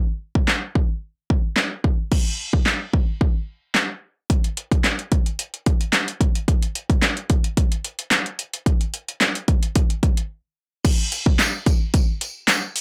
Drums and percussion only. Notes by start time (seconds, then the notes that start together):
0.35 kick
0.48 snare, clap
0.75 kick
1.30 kick
1.56 snare, clap
1.84 kick
2.12 kick, crash
2.53 kick
2.66 snare, clap
2.94 kick
3.21 kick
3.75 snare, clap
4.30 kick, closed hi-hat
4.44 closed hi-hat
4.57 closed hi-hat
4.72 kick, closed hi-hat
4.84 snare, clap, closed hi-hat
4.99 closed hi-hat
5.12 kick, closed hi-hat
5.26 closed hi-hat
5.39 closed hi-hat
5.54 closed hi-hat
5.66 kick, closed hi-hat
5.81 closed hi-hat
5.93 snare, clap, closed hi-hat
6.08 closed hi-hat
6.21 kick, closed hi-hat
6.35 closed hi-hat
6.48 kick, closed hi-hat
6.62 closed hi-hat
6.75 closed hi-hat
6.90 kick, closed hi-hat
7.02 snare, clap, closed hi-hat
7.17 closed hi-hat
7.30 kick, closed hi-hat
7.44 closed hi-hat
7.57 kick, closed hi-hat
7.72 closed hi-hat
7.84 closed hi-hat
7.99 closed hi-hat
8.11 snare, clap, closed hi-hat
8.26 closed hi-hat
8.39 closed hi-hat
8.54 closed hi-hat
8.66 kick, closed hi-hat
8.81 closed hi-hat
8.94 closed hi-hat
9.08 closed hi-hat
9.21 snare, clap, closed hi-hat
9.35 closed hi-hat
9.48 kick, closed hi-hat
9.63 closed hi-hat
9.75 kick, closed hi-hat
9.90 closed hi-hat
10.03 kick, closed hi-hat
10.17 closed hi-hat
10.85 kick, closed hi-hat, crash, tambourine
11.12 closed hi-hat, tambourine
11.26 kick
11.39 snare, clap, closed hi-hat, tambourine
11.66 kick, closed hi-hat, tambourine
11.94 kick, closed hi-hat, tambourine
12.21 closed hi-hat, tambourine
12.48 snare, clap, closed hi-hat, tambourine
12.76 open hi-hat, tambourine